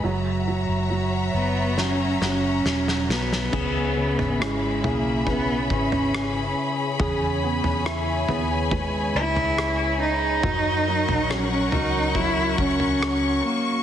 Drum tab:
CC |----------------|x---------------|----------------|----------------|
SD |--------o-o-oooo|----r-------r---|----r-------r---|----r-------r---|
FT |----------------|o--o--o-o--o----|o--o--o-o--o----|o--o--o-o--o----|
BD |----------------|o-------o-o-----|o-------o-------|o-------o-o-----|